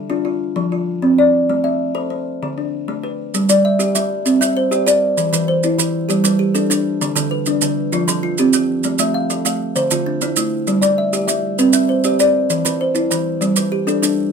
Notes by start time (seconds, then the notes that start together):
Already playing: A4
0.10 D4 F4
0.25 F4
0.56 F3
0.72 F4
1.02 C4
1.18 D5
1.50 A3
1.64 E5
1.95 A4 C5
2.10 C5
2.43 D3
2.58 D4
2.88 A3
3.03 B4
3.34 G3, maracas
3.49 G3 D5, maracas
3.65 E5
3.79 G4, maracas
3.95 G3 E5, maracas
4.25 C4, maracas
4.41 C4 E5, maracas
4.57 C5
4.71 G4 D5, maracas
4.87 G4 D5, maracas
5.17 E3, maracas
5.33 E3 B4, maracas
5.48 C5
5.63 E4, maracas
5.79 E3 C5, maracas
6.09 G3 G4, maracas
6.24 G3 B4, maracas
6.39 G4
6.55 D4 A4, maracas
6.70 D4 A4, maracas
7.01 D3, maracas
7.16 D3 A4, maracas
7.31 B4
7.46 D4, maracas
7.62 D3 B4, maracas
7.92 F3 F4, maracas
8.08 F3 A4, maracas
8.23 F4
8.38 C4 G4, maracas
8.53 C4 G4, maracas
8.84 A3, maracas
8.99 A3 E5, maracas
9.14 F5
9.30 A4, maracas
9.45 A3 F5, maracas
9.76 D3 C5, maracas
9.91 D3 F4, maracas
10.06 D4
10.21 A3 E4, maracas
10.36 A3 E4, maracas
10.67 G3, maracas
10.82 G3 D5, maracas
10.98 E5
11.13 G4, maracas
11.27 G3 E5, maracas
11.59 C4 B4, maracas
11.73 C4 E5, maracas
11.89 C5
12.04 G4 D5, maracas
12.20 G4 D5, maracas
12.50 E3, maracas
12.65 E3 B4, maracas
12.81 C5
12.95 E4, maracas
13.11 E3 C5, maracas
13.41 G3, maracas
13.56 G3 B4, maracas
13.72 G4
13.87 D4 A4, maracas
14.02 D4 A4, maracas